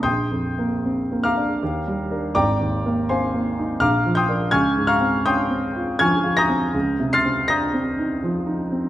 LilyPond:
\new Staff \with { instrumentName = "Grand piano" } { \time 3/4 \key ees \lydian \tempo 4 = 81 << { <g'' c''' ees''' g'''>4. <f'' bes'' d''' f'''>4. | <d'' g'' bes'' d'''>4 <c'' f'' aes'' c'''>4 <f'' bes'' d''' f'''>8 <g'' c''' ees''' g'''>8 | <aes'' des''' f''' aes'''>8 <f'' bes'' des''' f'''>8 <g'' c''' ees''' g'''>4 <aes'' des''' f''' aes'''>8 <bes'' ees''' g''' bes'''>8~ | <bes'' ees''' g''' bes'''>8 <c''' f''' a''' c''''>8 <bes'' ees''' g''' bes'''>4 r4 | } \\ { \tuplet 3/2 { bes,,8 f,8 bes8 c'8 bes8 d'8 ees,8 g8 <d' bes'>8 } | \tuplet 3/2 { aes,,8 ees,8 bes8 c'8 bes8 ees'8 bes,,8 f8 <d' bes'>8 } | \tuplet 3/2 { des,8 aes,8 c'8 des'8 c'8 f'8 f8 f'8 c'8 } | \tuplet 3/2 { des,8 c8 c'8 d'8 c'8 ees'8 f8 ees'8 c'8 } | } >> }